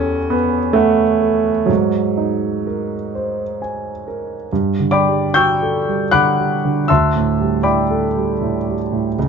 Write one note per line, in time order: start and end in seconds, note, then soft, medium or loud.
0.00 1.66 E2 medium
0.00 0.33 C#4 loud
0.00 0.18 G4 soft
0.00 0.59 A4 soft
0.30 0.74 B3 medium
0.30 1.02 B4 soft
0.73 1.67 A3 medium
0.73 1.49 F#5 soft
1.21 1.69 A4 soft
1.66 4.46 G#2 soft
1.66 3.60 F#3 medium
2.17 2.95 D#4 soft
2.67 3.43 A#4 soft
3.15 3.89 C5 soft
3.62 4.34 G#5 soft
4.08 4.50 A#4 soft
4.53 6.86 G2 medium
4.80 5.24 D3 soft
4.91 5.31 D5 medium
4.91 5.32 G5 medium
4.91 5.31 B5 medium
4.91 5.34 D6 medium
5.09 5.52 G3 soft
5.34 5.77 F#4 soft
5.34 6.09 G5 medium
5.34 6.08 C#6 medium
5.34 6.09 E6 medium
5.34 6.12 G6 medium
5.62 6.03 A4 soft
5.89 6.28 G3 soft
6.11 6.53 D3 soft
6.11 6.85 F#5 medium
6.11 6.85 B5 medium
6.11 6.85 D6 medium
6.11 6.89 F#6 medium
6.40 6.80 G3 soft
6.65 6.90 D3 soft
6.88 9.13 D2 soft
6.88 7.62 E5 medium
6.88 7.62 A5 medium
6.88 7.63 C6 medium
6.88 7.66 E6 medium
7.16 7.57 A2 soft
7.40 7.81 G3 soft
7.63 8.06 E4 soft
7.63 8.73 D5 soft
7.63 8.73 G5 medium
7.63 8.73 B5 medium
7.63 8.77 D6 medium
7.91 8.31 A4 soft
8.16 8.56 G3 soft
8.41 8.81 A2 soft
8.68 9.07 G3 soft
8.92 9.17 A2 soft
9.18 9.29 C#2 soft